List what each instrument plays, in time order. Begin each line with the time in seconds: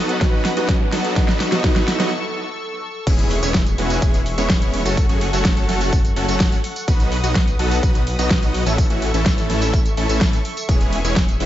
Already playing: detuned saw bass B1, grand piano F#3 B3 D#4 F#4, supersaw synth F#3 B3 D#4 F#4 A4, analog synth pad B4 F#5 D#6, riser
0.09 closed hi-hat
0.20 detuned saw bass B1, grand piano F#3 B3 D#4 F#4, supersaw synth F#3 B3 D#4 F#4 B4, kick, snare, closed hi-hat
0.45 snare, open hi-hat
0.56 detuned saw bass B1, grand piano F#3 B3 D#4 F#4, supersaw synth F#3 B3 D#4 F#4 D#5, closed hi-hat
0.69 kick, snare, closed hi-hat
0.80 grand piano F#3 B3 D#4 F#4
0.92 detuned saw bass B1, supersaw synth F#3 B3 D#4 F#4 A4, snare, open hi-hat
1.04 closed hi-hat
1.16 detuned saw bass A1, grand piano F#3 B3 D#4 F#4, supersaw synth F#3 B3 D#4 F#4 B4, analog synth pad A4 C#6 E6, kick, snare, closed hi-hat
1.28 snare
1.40 snare, open hi-hat
1.51 detuned saw bass A1, grand piano F#3 B3 D#4 F#4, supersaw synth F#3 B3 D#4 F#4 D#5, snare, closed hi-hat
1.63 detuned saw bass A1, grand piano F#3 B3 D#4 F#4, supersaw synth F#3 B3 D#4 F#4 B4, kick, snare, closed hi-hat
1.76 snare, closed hi-hat
1.88 snare, open hi-hat
1.99 detuned saw bass A1, grand piano F#3 B3 D#4 F#4, supersaw synth F#3 B3 D#4 F#4 D#5, snare, closed hi-hat
3.07 detuned saw bass E1, supersaw synth G#3 B3 C#4 E4 G#4, analog synth pad G#4 E5 C#6, kick, closed hi-hat, crash, tambourine, impact
3.19 closed hi-hat, tambourine
3.31 open hi-hat
3.43 detuned saw bass E1, supersaw synth G#3 B3 C#4 E4 C#5, closed hi-hat, tambourine
3.54 kick, snare, closed hi-hat, tambourine
3.66 closed hi-hat, tambourine
3.78 detuned saw bass E1, supersaw synth G#3 B3 C#4 E4 F#4, open hi-hat
3.90 closed hi-hat, tambourine
4.02 detuned saw bass E1, supersaw synth G#3 B3 C#4 E4, kick, closed hi-hat, tambourine
4.14 closed hi-hat, tambourine
4.26 open hi-hat
4.38 detuned saw bass E1, supersaw synth G#3 B3 C#4 E4 C#5, closed hi-hat, tambourine
4.50 kick, snare, closed hi-hat, tambourine
4.62 closed hi-hat, tambourine
4.74 open hi-hat
4.85 detuned saw bass F#1, supersaw synth F#3 A3 C#4 F#4 A4, closed hi-hat, tambourine
4.97 analog synth pad A4 F#5, kick, closed hi-hat, tambourine
5.09 detuned saw bass F#1, supersaw synth F#3 A3 C#4 F#4 G#4, closed hi-hat, tambourine
5.21 open hi-hat
5.33 detuned saw bass F#1, supersaw synth F#3 A3 C#4 F#4 A4, closed hi-hat, tambourine
5.45 kick, snare, closed hi-hat, tambourine
5.57 closed hi-hat, tambourine
5.69 detuned saw bass F#1, supersaw synth F#3 A3 C#4 F#4 A4, snare, open hi-hat
5.81 closed hi-hat, tambourine
5.93 kick, closed hi-hat, tambourine
6.05 closed hi-hat, tambourine
6.16 detuned saw bass F#1, supersaw synth F#3 A3 C#4 F#4 A4, open hi-hat
6.28 detuned saw bass F#1, supersaw synth F#3 A3 C#4 F#4 A4, closed hi-hat, tambourine
6.40 kick, snare, closed hi-hat, tambourine
6.52 closed hi-hat, tambourine
6.64 open hi-hat
6.76 closed hi-hat, tambourine
6.88 detuned saw bass B1, supersaw synth F#3 B3 D#4 F#4 B4, analog synth pad B4 D#6, kick, closed hi-hat, tambourine
7.00 closed hi-hat, tambourine
7.12 open hi-hat
7.24 detuned saw bass B1, supersaw synth F#3 B3 D#4 F#4 D#5, closed hi-hat, tambourine
7.35 kick, snare, closed hi-hat, tambourine
7.48 closed hi-hat, tambourine
7.59 detuned saw bass B1, supersaw synth F#3 B3 D#4 F#4 A4, open hi-hat
7.71 closed hi-hat, tambourine
7.83 detuned saw bass B1, supersaw synth B3 D#4 F#4 B4, kick, closed hi-hat, tambourine
7.95 closed hi-hat, tambourine
8.07 open hi-hat
8.19 detuned saw bass B1, supersaw synth F#3 B3 D#4 F#4 D#5, closed hi-hat, tambourine
8.31 kick, snare, closed hi-hat, tambourine
8.43 closed hi-hat, tambourine
8.54 open hi-hat
8.66 detuned saw bass A1, supersaw synth E3 A3 C#4 E4 A4, closed hi-hat, tambourine
8.78 analog synth pad A4 E5 C#6, kick, closed hi-hat, tambourine
8.90 detuned saw bass A1, supersaw synth E3 A3 C#4 E4 F#4, closed hi-hat, tambourine
9.02 open hi-hat
9.14 detuned saw bass A1, supersaw synth E3 A3 C#4 E4 A4, closed hi-hat, tambourine
9.26 kick, snare, closed hi-hat, tambourine
9.38 closed hi-hat, tambourine
9.50 detuned saw bass A1, supersaw synth E3 A3 C#4 E4 A4, snare, open hi-hat
9.62 closed hi-hat, tambourine
9.74 kick, closed hi-hat, tambourine
9.85 closed hi-hat, tambourine
9.97 detuned saw bass A1, supersaw synth E3 A3 C#4 E4 A4, open hi-hat
10.09 detuned saw bass A1, supersaw synth E3 A3 C#4 E4 A4, closed hi-hat, tambourine
10.21 kick, snare, closed hi-hat, tambourine
10.33 closed hi-hat, tambourine
10.45 open hi-hat
10.57 closed hi-hat, tambourine
10.69 detuned saw bass E1, supersaw synth G#3 B3 C#4 E4 G#4, analog synth pad G#4 E5, kick, closed hi-hat, tambourine
10.81 closed hi-hat, tambourine
10.93 open hi-hat
11.04 detuned saw bass E1, supersaw synth G#3 B3 C#4 E4 C#5, closed hi-hat, tambourine
11.16 kick, snare, closed hi-hat, tambourine
11.28 closed hi-hat, tambourine
11.40 detuned saw bass E1, supersaw synth G#3 B3 C#4 E4 F#4, open hi-hat